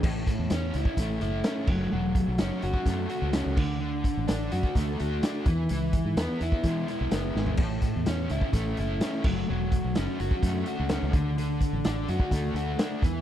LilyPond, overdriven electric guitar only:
\new Staff \with { instrumentName = "Overdriven electric guitar" } { \time 4/4 \key a \major \tempo 4 = 127 a,4 cis'8 e'8 a8 e'8 cis'8 fis8 | fis4 cis'8 fis'8 a8 fis'8 cis'8 d8 | d4 d'8 fis'8 a8 fis'8 d'8 e8 | e4 b8 e'8 gis8 e'8 b8 gis8 |
a,4 cis'8 e'8 a8 e'8 cis'8 fis8 | fis4 cis'8 fis'8 a8 fis'8 cis'8 d8 | d4 d'8 fis'8 a8 fis'8 d'8 e8 | }